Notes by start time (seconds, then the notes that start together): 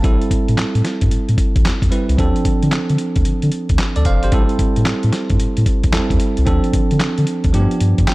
0.02 A1 G3 C4 E4 A4, kick, closed hi-hat
0.21 closed hi-hat
0.31 A2, kick, closed hi-hat
0.48 A2, closed hi-hat
0.58 A2, snare, clap, closed hi-hat
0.75 A2, closed hi-hat
0.85 snare, closed hi-hat
1.01 G2, kick, closed hi-hat
1.11 A2, closed hi-hat
1.29 A2, closed hi-hat
1.38 kick, closed hi-hat
1.56 A1, kick, closed hi-hat
1.65 E2, snare, clap, closed hi-hat
1.82 E2, kick, closed hi-hat
1.90 G3 C4 E4 B4, closed hi-hat
2.09 C2, closed hi-hat
2.17 D2 F3 C4 D4 A4, kick, closed hi-hat
2.36 closed hi-hat
2.45 D3, kick, closed hi-hat
2.63 D3, closed hi-hat
2.72 D3, snare, clap, closed hi-hat
2.89 D3, closed hi-hat
2.98 closed hi-hat
3.16 D2, kick, closed hi-hat
3.25 D3, closed hi-hat
3.42 D3, closed hi-hat
3.52 closed hi-hat
3.69 D2, kick, closed hi-hat
3.78 snare, clap, closed hi-hat
3.96 D2 A4 D5, closed hi-hat
4.05 F1 C5 F5, kick, closed hi-hat
4.23 G1 G4 C5, closed hi-hat
4.32 A1 G3 C4 E4 A4, kick, closed hi-hat
4.49 closed hi-hat
4.59 A2, kick, closed hi-hat
4.76 A2, closed hi-hat
4.85 A2, snare, clap, closed hi-hat
5.03 A2, closed hi-hat
5.13 snare, closed hi-hat
5.30 G2, kick, closed hi-hat
5.40 A2, closed hi-hat
5.57 A2, closed hi-hat
5.66 kick, closed hi-hat
5.83 A1, kick, closed hi-hat
5.93 E2 G3 C4 E4 A4, snare, clap, closed hi-hat
6.10 E2, kick, closed hi-hat
6.20 closed hi-hat
6.37 C2, closed hi-hat
6.45 D2 F3 C4 D4 A4, kick, closed hi-hat
6.64 closed hi-hat
6.73 D3, kick, closed hi-hat
6.91 D3, closed hi-hat
7.00 D3, snare, clap, closed hi-hat
7.18 D3, closed hi-hat
7.27 closed hi-hat
7.44 D2, kick, closed hi-hat
7.53 G2 F3 A3 D4 G4, closed hi-hat
7.60 B3
7.71 closed hi-hat
7.80 G2, closed hi-hat
7.98 G2, kick, closed hi-hat
8.07 G5, snare, clap, closed hi-hat